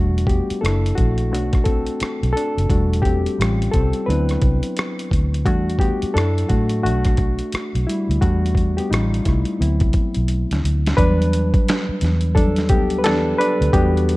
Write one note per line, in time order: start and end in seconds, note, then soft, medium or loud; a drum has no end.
0.00 0.40 E1 medium
0.00 0.43 G3 soft
0.00 0.27 A3 medium
0.00 0.43 D4 soft
0.00 0.43 F#4 medium
0.18 closed hi-hat soft
0.27 0.61 B3 medium
0.27 0.63 G4 medium
0.27 kick medium
0.27 closed hi-hat medium
0.50 muted fingered electric bass stroke soft
0.50 closed hi-hat soft
0.61 0.91 F#1 medium
0.61 1.28 A#3 soft
0.61 0.95 D4 medium
0.61 1.29 E4 medium
0.61 0.94 A4 medium
0.61 closed hi-hat medium
0.66 cross-stick loud
0.86 closed hi-hat soft
0.95 1.32 A#1 medium
0.95 1.31 A3 medium
0.95 1.32 F#4 medium
0.95 kick medium
0.95 closed hi-hat medium
1.18 closed hi-hat soft
1.32 1.88 B1 medium
1.32 2.31 A3 soft
1.32 2.31 D4 soft
1.32 2.32 F#4 medium
1.32 closed hi-hat medium
1.53 kick medium
1.53 cross-stick soft
1.53 closed hi-hat soft
1.64 2.32 C4 medium
1.64 2.31 A4 medium
1.64 kick medium
1.64 closed hi-hat medium
1.86 closed hi-hat soft
2.00 muted fingered electric bass stroke soft
2.00 cross-stick medium
2.00 closed hi-hat medium
2.23 2.33 B1 medium
2.23 closed hi-hat soft
2.33 2.69 D4 medium
2.33 3.05 A4 medium
2.37 closed hi-hat medium
2.57 2.68 F#1 medium
2.57 closed hi-hat soft
2.69 3.26 E1 loud
2.69 3.18 G3 soft
2.69 3.19 A3 soft
2.69 3.19 D4 soft
2.69 3.19 F#4 medium
2.69 kick loud
2.69 closed hi-hat medium
2.93 closed hi-hat soft
3.02 3.70 C4 medium
3.02 3.68 G4 medium
3.02 kick medium
3.02 closed hi-hat medium
3.26 closed hi-hat soft
3.39 3.67 A1 loud
3.39 3.88 G3 soft
3.39 3.88 C#4 soft
3.39 3.88 F4 medium
3.39 cross-stick medium
3.39 closed hi-hat medium
3.62 closed hi-hat soft
3.72 3.91 C2 medium
3.72 4.06 C4 medium
3.72 4.08 A4 medium
3.72 kick medium
3.72 closed hi-hat medium
3.93 closed hi-hat soft
4.06 4.36 D2 medium
4.06 5.41 F#3 soft
4.06 5.42 B3 soft
4.06 5.42 C4 soft
4.06 4.73 D4 medium
4.06 5.42 E4 medium
4.06 4.72 B4 medium
4.10 closed hi-hat medium
4.29 cross-stick soft
4.29 closed hi-hat soft
4.42 4.60 C2 medium
4.42 kick medium
4.42 closed hi-hat medium
4.63 closed hi-hat soft
4.77 cross-stick loud
4.77 closed hi-hat medium
4.99 closed hi-hat soft
5.11 5.46 D2 medium
5.11 kick medium
5.11 closed hi-hat medium
5.34 closed hi-hat soft
5.45 5.91 E2 loud
5.45 6.11 G3 soft
5.45 5.78 A3 medium
5.45 6.11 D4 soft
5.45 6.12 F#4 medium
5.45 kick medium
5.45 closed hi-hat medium
5.70 closed hi-hat soft
5.79 6.13 B3 medium
5.79 6.15 G4 medium
5.79 kick medium
5.79 closed hi-hat medium
6.02 muted fingered electric bass stroke soft
6.02 closed hi-hat soft
6.14 6.43 F#2 medium
6.14 6.80 F#3 soft
6.14 6.47 D4 medium
6.14 6.81 E4 soft
6.14 6.46 A4 medium
6.14 cross-stick loud
6.14 closed hi-hat medium
6.38 closed hi-hat soft
6.49 6.86 A2 medium
6.49 6.82 A3 medium
6.49 6.82 F#4 medium
6.49 kick medium
6.49 closed hi-hat medium
6.69 closed hi-hat soft
6.83 7.40 B1 medium
6.83 7.84 A3 medium
6.83 8.18 D4 soft
6.83 8.18 F#4 medium
6.83 closed hi-hat medium
7.05 kick medium
7.05 cross-stick soft
7.05 closed hi-hat soft
7.17 kick medium
7.17 closed hi-hat medium
7.39 closed hi-hat soft
7.52 muted fingered electric bass stroke soft
7.52 cross-stick loud
7.52 closed hi-hat medium
7.75 7.85 B1 medium
7.75 closed hi-hat soft
7.87 8.20 G3 medium
7.87 8.19 E4 medium
7.87 closed hi-hat medium
8.09 8.19 D2 medium
8.09 closed hi-hat soft
8.21 8.78 E2 medium
8.21 8.87 G3 soft
8.21 8.74 A3 medium
8.21 8.88 D4 soft
8.21 8.88 F#4 medium
8.21 kick medium
8.21 closed hi-hat medium
8.46 closed hi-hat soft
8.55 kick medium
8.55 closed hi-hat medium
8.77 8.85 B3 medium
8.77 8.83 G4 medium
8.77 closed hi-hat soft
8.90 9.19 A1 medium
8.90 9.24 G3 medium
8.90 9.57 C#4 soft
8.90 9.22 D#4 medium
8.90 9.57 F4 medium
8.90 cross-stick loud
8.90 closed hi-hat medium
9.14 closed hi-hat soft
9.25 9.43 C2 medium
9.25 10.60 A3 medium
9.25 9.60 E4 medium
9.25 kick medium
9.25 cross-stick soft
9.25 closed hi-hat medium
9.45 closed hi-hat soft
9.60 9.82 D2 loud
9.60 10.09 F#3 soft
9.60 10.09 B3 soft
9.60 10.09 C4 soft
9.60 10.09 E4 medium
9.60 closed hi-hat medium
9.80 9.92 C2 medium
9.80 kick medium
9.80 closed hi-hat soft
9.93 kick medium
9.93 closed hi-hat medium
10.14 10.44 B1 medium
10.14 closed hi-hat soft
10.28 closed hi-hat medium
10.51 10.61 D2 medium
10.51 snare soft
10.51 closed hi-hat soft
10.64 10.92 D2 medium
10.64 closed hi-hat medium
10.86 snare medium
10.86 closed hi-hat soft
10.97 11.54 E2 loud
10.97 12.34 F#3 medium
10.97 12.35 G3 soft
10.97 11.98 D4 medium
10.97 11.96 B4 loud
10.97 kick loud
10.97 closed hi-hat medium
11.22 closed hi-hat soft
11.33 closed hi-hat medium
11.54 kick loud
11.54 closed hi-hat soft
11.68 finger snap medium
11.68 snare loud
11.68 closed hi-hat medium
11.89 muted fingered electric bass stroke soft
12.01 12.70 E2 medium
12.01 snare soft
12.01 closed hi-hat medium
12.21 closed hi-hat soft
12.35 12.66 F#3 soft
12.35 12.67 G3 soft
12.35 12.68 D4 medium
12.35 12.67 A4 medium
12.35 kick medium
12.35 closed hi-hat medium
12.56 snare soft
12.56 closed hi-hat soft
12.69 13.05 D2 medium
12.69 12.98 B3 medium
12.69 13.00 G4 medium
12.69 kick loud
12.69 closed hi-hat medium
12.90 closed hi-hat soft
12.98 13.04 B4 medium
13.04 13.33 E2 medium
13.04 13.37 D4 medium
13.04 13.36 A4 loud
13.04 finger snap medium
13.04 snare loud
13.04 closed hi-hat medium
13.38 13.71 D4 medium
13.38 13.74 B4 loud
13.38 closed hi-hat medium
13.61 13.71 D2 medium
13.61 closed hi-hat soft
13.73 14.17 E2 loud
13.73 14.17 G3 medium
13.73 14.17 B3 medium
13.73 14.17 D4 medium
13.73 14.17 F#4 medium
13.73 14.17 G4 medium
13.73 kick loud
13.73 closed hi-hat medium
13.97 closed hi-hat soft
14.09 closed hi-hat medium